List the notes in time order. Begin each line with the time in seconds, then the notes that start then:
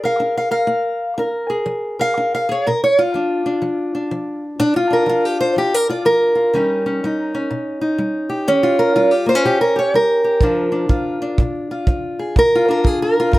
Already playing: F3 G#4
0.04 A#4 F5
0.20 D4
0.38 F5
0.51 A#4 F5
0.67 A#3
1.18 D4 A#4
1.50 G#4
1.66 F3
1.99 A#4 F5
2.17 D4
2.35 F5
2.49 G#4 C#5
2.67 A#2 A#4
2.84 C#5
2.99 F4
3.14 F3 D4
3.46 D4
3.62 F3
3.95 D4
4.11 F3
4.59 A#2 D4
4.76 F4
4.90 D4 A#4
5.06 F3 F4
5.25 G4
5.41 C5
5.56 F3 G4
5.74 A#4
5.89 F4 D5
6.05 F3 A#4
6.35 F4
6.53 D#3 G3 C#4 D#4
6.86 C#4
7.04 G3 D#4
7.34 C#4
7.51 A#2
7.81 D#4
7.98 G3
8.29 G4
8.48 D#3 C#4
8.63 F4
8.79 A#4
8.96 G3 F4
9.11 G4
9.26 A#3 C5
9.35 C#4
9.44 A#2 G4
9.61 A#4
9.76 G4 C#5
9.94 G3 A#4
10.24 G4
10.41 A#2 F3 D4 F4, kick
10.72 D4
10.89 F3 F4, kick
11.22 D4
11.38 A#2, kick
11.71 F4
11.87 F3, kick
12.19 G#4
12.36 A#2 A#4, kick
12.55 F4
12.69 D4 A#4
12.84 F3 G#4, kick
13.02 A#4
13.20 F4
13.32 A#2 A#4, kick